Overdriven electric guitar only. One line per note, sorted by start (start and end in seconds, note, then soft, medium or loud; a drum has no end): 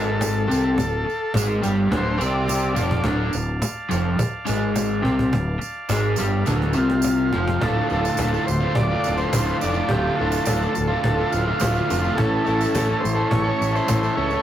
0.00 0.47 G#2 medium
0.00 0.49 G#3 loud
0.48 0.76 C3 medium
0.48 0.77 C4 loud
0.77 1.00 D2 medium
1.06 muted overdriven electric guitar stroke medium
1.34 1.61 G#2 medium
1.34 1.63 G#3 loud
1.62 1.90 G2 medium
1.62 1.91 G3 loud
1.90 2.18 D2 medium
1.90 2.19 D3 loud
2.18 2.74 C3 loud
2.18 2.75 C4 loud
2.74 3.03 F2 medium
2.74 3.04 F3 loud
3.04 3.32 D2 medium
3.04 3.33 D3 loud
3.33 3.56 D2 medium
3.89 4.18 F2 medium
3.89 4.19 F3 loud
4.18 muted overdriven electric guitar stroke medium
4.45 5.02 G#2 medium
4.45 5.03 G#3 loud
5.02 5.31 C3 medium
5.02 5.32 C4 loud
5.33 5.56 D2 medium
5.59 muted overdriven electric guitar stroke medium
5.89 6.17 G#2 loud
5.89 6.18 G#3 loud
6.18 6.45 G2 medium
6.18 6.46 G3 loud
6.45 6.74 D2 loud
6.45 6.75 D3 medium
6.74 7.32 C3 loud
6.74 7.32 C4 loud
7.32 7.60 F2 medium
7.32 7.61 F3 loud
7.60 8.17 D2 medium
7.60 7.88 A2 medium
7.60 7.90 D3 loud
7.60 7.92 A3 loud
7.60 7.93 F4 loud
7.89 8.18 A2 medium
7.89 8.20 D3 medium
7.89 8.21 A3 medium
7.93 8.22 F4 medium
8.18 9.31 D2 loud
8.18 8.47 A2 medium
8.18 8.36 D3 loud
8.18 8.34 A3 medium
8.22 8.31 F4 medium
8.32 8.48 A3 medium
8.32 8.49 F4 medium
8.36 8.48 D3 medium
8.48 muted overdriven electric guitar stroke medium
8.61 8.92 D3 medium
8.61 8.91 A3 medium
8.61 8.87 F4 medium
8.88 9.19 A3 medium
8.88 9.15 F4 medium
8.93 9.20 D3 medium
9.17 9.34 A3 medium
9.17 9.34 F4 medium
9.21 9.32 D3 medium
9.31 9.75 D2 medium
9.31 9.59 A2 loud
9.31 9.49 D3 loud
9.31 9.48 A3 loud
9.36 9.44 F4 loud
9.45 9.62 A3 medium
9.45 9.63 F4 medium
9.50 9.60 D3 medium
9.60 9.89 A2 medium
9.60 9.77 D3 medium
9.60 9.76 A3 medium
9.64 9.72 F4 medium
9.74 9.92 A3 medium
9.74 9.93 F4 medium
9.78 9.90 D3 medium
9.89 10.44 D2 medium
9.89 10.16 A2 medium
9.89 10.18 D3 medium
9.89 10.20 A3 loud
9.94 10.21 F4 loud
10.17 10.46 A2 medium
10.17 10.47 D3 medium
10.17 10.48 A3 medium
10.22 10.49 F4 medium
10.46 10.90 D2 medium
10.46 10.74 A2 medium
10.46 10.63 D3 medium
10.46 10.62 A3 loud
10.51 10.59 F4 loud
10.60 10.75 A3 medium
10.60 10.75 F4 medium
10.64 10.74 D3 medium
10.75 muted overdriven electric guitar stroke soft
10.88 11.18 A3 medium
10.88 11.14 F4 medium
10.92 11.19 D3 medium
11.15 11.46 A3 medium
11.15 11.43 F4 medium
11.20 11.48 D3 medium
11.45 11.62 A3 medium
11.45 11.62 F4 medium
11.49 11.60 D3 medium
11.59 12.03 D2 loud
11.59 11.86 A2 medium
11.59 11.76 D3 loud
11.59 11.75 A3 loud
11.63 11.72 F4 loud
11.73 11.88 D3 medium
11.73 11.90 A3 medium
11.73 11.90 F4 medium
11.87 12.14 A2 medium
11.87 12.05 D3 medium
11.87 12.04 A3 medium
11.87 12.01 F4 medium
12.02 12.17 A3 medium
12.02 12.16 F4 medium
12.06 12.17 D3 medium
12.15 12.73 A2 medium
12.15 12.74 E3 loud
12.15 12.44 A3 loud
12.15 12.46 C#4 loud
12.15 12.47 E4 medium
12.20 12.48 A4 loud
12.45 12.75 A3 medium
12.45 12.75 C#4 medium
12.45 12.76 E4 loud
12.45 12.77 A4 medium
12.73 13.86 A2 medium
12.73 13.88 E3 medium
12.73 12.91 A3 medium
12.73 12.89 C#4 loud
12.73 12.87 E4 loud
12.78 12.86 A4 loud
12.86 13.02 C#4 medium
12.86 13.02 E4 medium
12.86 13.02 A4 medium
12.91 13.01 A3 medium
13.02 muted overdriven electric guitar stroke soft
13.15 13.45 C#4 medium
13.15 13.44 E4 medium
13.15 13.43 A4 medium
13.19 13.47 A3 medium
13.43 13.74 C#4 medium
13.43 13.74 E4 medium
13.43 13.72 A4 medium
13.48 13.77 A3 medium
13.73 13.88 C#4 medium
13.73 13.90 E4 medium
13.73 13.91 A4 medium
13.77 13.88 A3 medium
13.87 14.31 A2 loud
13.87 14.32 E3 medium
13.87 14.05 A3 loud
13.87 14.03 C#4 loud
13.91 14.02 E4 loud
13.91 14.01 A4 loud
14.01 14.16 C#4 medium
14.01 14.18 E4 medium
14.01 14.19 A4 medium
14.05 14.15 A3 medium
14.16 14.34 A3 medium
14.16 14.32 C#4 medium
14.16 14.31 E4 medium
14.16 14.30 A4 medium
14.30 14.42 C#4 medium
14.30 14.42 E4 medium
14.30 14.42 A4 medium
14.35 14.42 A3 medium